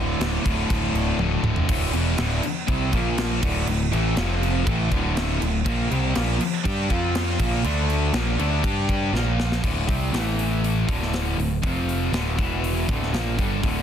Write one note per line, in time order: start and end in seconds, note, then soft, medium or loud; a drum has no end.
0.00 0.14 D1 medium
0.00 0.43 D2 medium
0.00 0.44 A2 medium
0.00 0.43 D3 medium
0.19 0.37 D1 medium
0.19 snare loud
0.19 crash medium
0.44 0.63 D1 medium
0.44 1.17 D2 medium
0.44 1.18 A2 medium
0.44 1.17 D3 medium
0.44 kick loud
0.44 crash medium
0.70 0.88 D1 medium
0.70 kick loud
0.70 crash medium
0.93 1.11 D1 loud
0.93 crash medium
1.17 1.36 D1 medium
1.17 1.67 D2 medium
1.17 1.68 A2 medium
1.17 high tom medium
1.21 1.68 D3 medium
1.43 1.61 D1 medium
1.43 mid tom medium
1.56 floor tom loud
1.68 1.92 D1 medium
1.68 1.93 D2 medium
1.68 1.93 A2 medium
1.68 1.93 D3 loud
1.68 kick loud
1.68 crash loud
1.68 crash medium
1.93 2.16 E1 medium
1.93 2.18 E2 loud
1.93 2.18 B2 loud
1.93 2.18 E3 loud
1.93 crash medium
2.18 2.41 D1 loud
2.18 2.42 D2 loud
2.18 2.42 A2 loud
2.18 2.43 D3 loud
2.18 snare loud
2.18 crash medium
2.43 muted picked electric bass stroke soft
2.43 muted distorted electric guitar stroke medium
2.43 crash medium
2.67 2.91 C2 loud
2.67 2.92 C3 loud
2.67 2.92 G3 loud
2.67 2.92 C4 loud
2.67 kick loud
2.67 crash medium
2.92 3.39 A#1 loud
2.92 3.41 A#2 medium
2.92 3.41 F3 medium
2.92 3.42 A#3 loud
2.92 kick medium
2.92 crash medium
3.18 snare loud
3.18 crash medium
3.42 3.66 D1 medium
3.42 3.66 D2 medium
3.42 3.66 A2 loud
3.42 3.67 D3 loud
3.42 kick loud
3.42 crash loud
3.67 3.90 D1 medium
3.67 3.87 D2 medium
3.67 3.87 A2 medium
3.67 crash medium
3.92 4.15 A1 medium
3.92 4.16 A2 medium
3.92 4.16 E3 loud
3.92 4.17 A3 loud
3.92 crash medium
4.17 4.63 F1 loud
4.17 4.65 F2 loud
4.17 4.66 C3 loud
4.17 4.66 F3 loud
4.17 snare loud
4.17 crash medium
4.43 crash medium
4.66 4.90 A1 medium
4.66 4.90 A2 medium
4.66 4.91 E3 loud
4.66 4.91 A3 loud
4.66 kick loud
4.66 crash medium
4.91 5.38 D1 loud
4.91 5.40 D2 medium
4.91 5.40 A2 medium
4.91 5.40 D3 loud
4.91 kick medium
4.91 crash medium
5.17 snare loud
5.17 crash medium
5.41 5.64 D1 medium
5.41 5.61 D2 medium
5.41 5.61 A2 medium
5.41 crash medium
5.66 5.89 A#1 loud
5.66 5.90 A#2 medium
5.66 5.90 F3 loud
5.66 5.90 A#3 loud
5.66 kick loud
5.66 crash medium
5.90 6.14 C2 medium
5.90 6.14 C3 loud
5.90 6.15 G3 loud
5.90 6.15 C4 loud
5.90 crash medium
6.15 6.39 A#1 loud
6.15 6.38 A#2 medium
6.15 6.39 F3 loud
6.15 6.39 A#3 loud
6.15 snare loud
6.15 crash loud
6.40 muted distorted electric guitar stroke medium
6.40 crash medium
6.65 6.88 G2 loud
6.65 6.89 G3 loud
6.65 6.89 D4 loud
6.65 6.89 G4 loud
6.65 kick loud
6.65 crash medium
6.89 7.36 F2 loud
6.89 7.38 F3 medium
6.89 7.38 C4 medium
6.89 7.39 F4 loud
6.89 kick medium
6.89 crash medium
7.15 snare loud
7.15 crash medium
7.38 7.62 A#1 medium
7.38 7.63 A#2 medium
7.38 7.63 F3 medium
7.38 7.63 A#3 medium
7.38 kick loud
7.38 crash loud
7.64 8.10 D2 loud
7.64 8.13 D3 medium
7.64 8.13 A3 medium
7.64 8.13 D4 loud
7.64 crash medium
7.90 crash medium
8.13 8.37 A#1 loud
8.13 8.37 A#2 medium
8.13 8.38 F3 loud
8.13 8.38 A#3 loud
8.13 snare loud
8.13 crash medium
8.39 8.62 D2 medium
8.39 8.63 D3 loud
8.39 8.63 A3 medium
8.39 8.63 D4 loud
8.39 crash medium
8.63 9.10 G2 medium
8.63 9.12 G3 medium
8.63 9.13 D4 loud
8.63 9.13 G4 loud
8.63 kick loud
8.63 crash medium
8.89 kick medium
8.89 crash medium
9.13 9.59 A#1 loud
9.13 9.62 A#2 medium
9.13 9.62 F3 medium
9.13 9.63 A#3 loud
9.13 snare medium
9.40 snare medium
9.52 snare loud
9.63 9.86 D1 medium
9.63 9.87 D2 medium
9.63 9.87 A2 medium
9.63 9.88 D3 medium
9.63 kick loud
9.63 crash loud
9.88 10.12 C2 medium
9.88 10.12 C3 medium
9.88 10.13 G3 loud
9.88 10.13 C4 loud
9.88 kick loud
9.88 open hi-hat medium
10.13 10.84 A1 medium
10.13 10.87 A2 medium
10.13 10.87 E3 loud
10.13 10.88 A3 loud
10.13 snare loud
10.13 open hi-hat medium
10.39 open hi-hat medium
10.64 open hi-hat medium
10.88 11.37 D2 medium
10.88 11.37 A2 medium
10.88 11.38 D3 medium
10.88 kick loud
10.88 open hi-hat medium
11.02 snare soft
11.14 snare loud
11.14 open hi-hat medium
11.38 11.61 D1 medium
11.38 11.58 D2 medium
11.38 11.58 A2 medium
11.38 open hi-hat soft
11.63 12.10 F1 medium
11.63 12.12 F2 medium
11.63 12.12 C3 medium
11.63 12.12 F3 medium
11.63 kick loud
11.63 open hi-hat medium
11.89 open hi-hat medium
12.12 12.36 D1 loud
12.12 12.38 D2 medium
12.12 12.38 A2 medium
12.12 12.39 D3 loud
12.12 snare loud
12.12 open hi-hat medium
12.38 12.85 E1 medium
12.38 12.87 E2 medium
12.38 12.87 B2 loud
12.38 12.88 E3 medium
12.38 kick loud
12.38 open hi-hat medium
12.64 open hi-hat medium
12.87 13.12 D1 loud
12.87 13.12 D2 medium
12.87 13.12 A2 medium
12.87 13.12 D3 medium
12.87 kick loud
12.87 open hi-hat medium
13.03 snare soft
13.12 13.37 A#1 medium
13.12 13.37 A#2 medium
13.12 13.37 F3 medium
13.12 13.38 A#3 loud
13.12 snare medium
13.12 open hi-hat medium
13.37 13.62 G1 medium
13.37 13.62 G2 medium
13.37 13.62 D3 medium
13.37 13.62 G3 loud
13.37 kick medium
13.37 open hi-hat medium
13.62 13.82 D1 loud
13.62 13.82 D2 medium
13.62 13.82 A2 medium
13.62 13.82 D3 loud
13.62 kick loud
13.62 open hi-hat medium